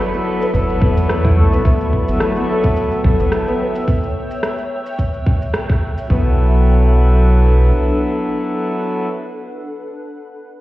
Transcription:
Already playing: harp A3 B3 A4 B4, harmonium E4 A4, ambient pad A4 D5 E5 B5, synth texture B4
0.12 harmonium F#3 B3 E4 A4, shaker
0.42 harp B4, shaker
0.51 sub bass F#1, harmonium F#3 B3 E4 A4, kick, shaker
0.69 shaker
0.81 harp B3, kick
0.97 sub bass E2, shaker
1.09 harp B3, cross-stick, shaker
1.24 harp E4, kick, shaker
1.36 sub bass B1, harp A3
1.52 harp B3, shaker
1.64 sub bass C#2, harmonium F#3 B3 E4 A4, harp B3, ambient pad C#5 G5 E6, kick, shaker
1.80 shaker
1.93 kick
2.07 sub bass G1, harmonium F#3 B3 E4 A4, harp B3, shaker
2.20 harp A3, cross-stick, shaker
2.34 harmonium F#3 B3 E4, harp B3, shaker
2.38 harmonium A4
2.49 harp A4
2.63 harp B3, kick, shaker
2.76 shaker
2.92 shaker
3.02 sub bass B1, harmonium F#3 B3 E4, harp A4, kick
3.06 harmonium A4
3.19 sub bass G1, harp B3, shaker
3.32 cross-stick, shaker
3.47 harp B3, shaker
3.61 harp B4
3.75 shaker
3.86 ambient pad F#6, kick, shaker
4.03 shaker
4.31 shaker
4.43 cross-stick, shaker
4.58 shaker
4.86 shaker
4.98 kick, shaker
5.14 shaker
5.26 kick
5.42 shaker
5.54 cross-stick, shaker
5.70 kick, shaker
5.98 shaker
6.07 sub bass B1, harmonium F#3 B3, harp B3, ambient pad D4 A4 B4 F#5, kick
6.11 harmonium E4 A4

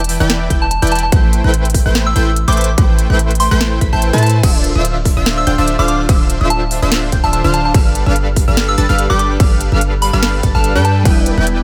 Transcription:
Already playing: 808-style bass E1, supersaw synth E3 E4 B4 D5 G5, synth pluck G6
0.04 closed hi-hat
0.09 open hi-hat
0.20 808-style bass E1, supersaw synth E3 E4 B4 D5 G5, synth pluck G6
0.30 snare, closed hi-hat
0.50 808-style bass E1, supersaw synth E3 E4 B4 D5 G5, synth pluck G6, kick, closed hi-hat
0.62 synth bell A5
0.71 synth bell A5, closed hi-hat
0.82 808-style bass E1, supersaw synth E3 E4 B4 D5 G5, synth pluck G6, closed hi-hat
0.87 closed hi-hat
0.92 synth bell A5, closed hi-hat
0.95 closed hi-hat
0.99 closed hi-hat
1.03 synth bell A5
1.12 808-style bass A1, supersaw synth A3 E4 B4 C5 G5, synth pluck G6, kick, closed hi-hat
1.33 closed hi-hat
1.44 808-style bass A1, supersaw synth A3 E4 B4 C5 G5, synth pluck G6
1.54 closed hi-hat
1.65 closed hi-hat
1.70 closed hi-hat
1.74 kick, open hi-hat
1.86 808-style bass A1, supersaw synth A3 E4 B4 C5 G5, synth pluck G6
1.95 snare, closed hi-hat
2.06 synth bell E6
2.16 808-style bass A1, supersaw synth A3 E4 B4 C5 G5, synth pluck G6, closed hi-hat
2.36 closed hi-hat
2.48 808-style bass A1, supersaw synth A3 E4 B4 C5 G5, synth bell D6, synth pluck G6, closed hi-hat
2.52 closed hi-hat
2.57 synth bell D6, closed hi-hat
2.61 closed hi-hat
2.64 closed hi-hat
2.78 808-style bass A1, supersaw synth A3 E4 B4 C5 G5, synth pluck G6, kick, closed hi-hat
2.99 closed hi-hat
3.10 808-style bass A1, supersaw synth A3 E4 B4 C5 G5, synth pluck G6
3.19 closed hi-hat
3.31 closed hi-hat
3.35 closed hi-hat
3.40 synth bell C6, open hi-hat
3.51 808-style bass A1, supersaw synth A3 E4 B4 C5 G5, synth pluck G6
3.61 snare, closed hi-hat
3.81 808-style bass A1, supersaw synth A3 E4 B4 C5 B5, synth pluck B6, kick, closed hi-hat
3.93 808-style bass A1, supersaw synth A3 E4 B4 C5 G5, synth bell A5, synth pluck G6
4.02 closed hi-hat
4.13 808-style bass A2, supersaw synth A3 E4 B4 C5 A5, synth pluck A6, closed hi-hat
4.18 closed hi-hat
4.23 synth bell A5, closed hi-hat
4.26 closed hi-hat
4.30 closed hi-hat
4.43 808-style bass D1, supersaw synth D3 D4 F4 E5, synth pluck E6, kick, closed hi-hat, crash
4.64 closed hi-hat
4.75 808-style bass D1, supersaw synth D3 D4 F4 C5 E5, synth pluck E6
4.85 closed hi-hat
5.05 kick, open hi-hat
5.17 808-style bass D1, supersaw synth D3 D4 F4 C5 E5, synth pluck E6
5.26 snare, closed hi-hat, crash
5.38 synth bell E6
5.47 808-style bass D1, supersaw synth D3 D4 F4 C5 G5, synth pluck G6, closed hi-hat
5.58 808-style bass D1, supersaw synth D3 D4 F4 C5 E5, synth pluck E6
5.68 closed hi-hat
5.79 808-style bass D1, supersaw synth D3 D4 F4 C5 F5, synth bell D6, synth pluck F6
5.88 synth bell D6, closed hi-hat
6.09 808-style bass D1, supersaw synth D3 D4 F4 C5 E5, synth pluck E6, kick, closed hi-hat, crash
6.30 closed hi-hat
6.41 808-style bass D1, supersaw synth D3 D4 F4 C5 E5, synth pluck E6
6.50 synth bell A5, closed hi-hat
6.71 open hi-hat
6.82 808-style bass D1, supersaw synth D3 D4 F4 C5 E5, synth pluck E6
6.92 snare, closed hi-hat, crash
7.12 808-style bass D1, supersaw synth D3 D4 F4 C5 G5, synth pluck G6, kick, closed hi-hat
7.24 808-style bass D1, supersaw synth D3 D4 F4 C5 E5, synth bell A5, synth pluck E6
7.33 synth bell A5, closed hi-hat
7.44 808-style bass D1, supersaw synth D3 D4 F4 C5 F5, synth pluck F6
7.54 synth bell A5, closed hi-hat
7.65 synth bell A5
7.74 808-style bass G1, supersaw synth G3 D4 A4 B4 F5, synth pluck F6, kick, closed hi-hat, crash
7.95 closed hi-hat
8.06 808-style bass G1, supersaw synth G3 D4 A4 B4 F5, synth pluck F6
8.16 closed hi-hat
8.36 kick, open hi-hat
8.48 808-style bass G1, supersaw synth G3 D4 A4 B4 F5, synth pluck F6
8.57 snare, closed hi-hat, crash
8.69 synth bell E6
8.78 808-style bass G1, supersaw synth G3 D4 A4 B4 A5, synth pluck A6, closed hi-hat
8.89 808-style bass G1, supersaw synth G3 D4 A4 B4 F5, synth pluck F6
8.99 closed hi-hat
9.10 808-style bass G1, supersaw synth G3 D4 A4 B4 G5, synth bell D6, synth pluck G6
9.19 synth bell D6, closed hi-hat
9.40 808-style bass G1, supersaw synth G3 D4 A4 B4 F5, synth pluck F6, kick, closed hi-hat, crash
9.61 closed hi-hat
9.72 808-style bass G1, supersaw synth G3 D4 A4 B4 F5, synth pluck F6
9.81 closed hi-hat
10.02 synth bell B5, open hi-hat
10.13 808-style bass G1, supersaw synth G3 D4 A4 B4 F5, synth pluck F6
10.23 snare, closed hi-hat, crash
10.43 808-style bass G1, supersaw synth G3 D4 A4 B4 A5, synth pluck A6, kick, closed hi-hat
10.55 808-style bass G1, supersaw synth G3 D4 A4 B4 F5, synth bell A5, synth pluck F6
10.64 closed hi-hat
10.75 808-style bass G2, supersaw synth G3 D4 A4 B4 G5, synth pluck G6
10.85 synth bell A5, closed hi-hat
11.03 808-style bass E1, supersaw synth E3 E4 B4 D5 G5, synth keys G3 B3 D4 E4, synth pluck G6, kick, closed hi-hat, crash
11.07 synth keys B4
11.26 closed hi-hat
11.37 808-style bass E1, supersaw synth E3 E4 B4 D5 G5, synth pluck G6
11.47 closed hi-hat

